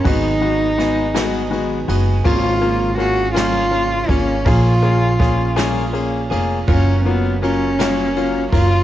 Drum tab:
RD |xxxxxx|xxxxxx|xxxxxx|xxxxxx|
SD |--oo--|---o--|--oo--|---o--|
BD |o-----|o----o|o-o---|o----o|